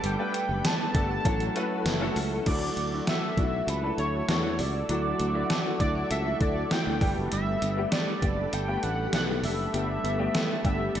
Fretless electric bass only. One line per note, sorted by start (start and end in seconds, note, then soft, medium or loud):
0.04 0.15 G1 loud
0.49 0.61 F#1 medium
0.94 1.17 G1 loud
1.25 1.48 A1 loud
1.85 2.08 F#1 medium
2.16 2.39 C#2 medium
2.47 2.69 D2 loud
2.77 3.00 D2 medium
3.37 3.60 B1 medium
3.67 3.90 C#2 medium
3.98 4.21 D2 medium
4.29 4.60 E2 medium
4.59 4.82 C#2 medium
4.89 5.12 D2 loud
5.20 5.43 D2 medium
5.80 6.03 D2 medium
6.11 6.33 C#2 medium
6.41 6.63 D2 medium
6.87 6.98 D2 medium
7.01 7.13 G1 medium
7.17 7.28 F#1 medium
7.33 7.55 G1 medium
7.62 7.85 G1 medium
8.22 8.45 F#1 medium
8.53 8.76 G1 medium
8.84 9.06 A1 medium
9.13 9.45 B1 medium
9.43 9.66 F#1 medium
9.74 9.97 G1 loud
10.04 10.27 G1 medium
10.65 10.87 G1 medium
10.95 11.00 F#1 medium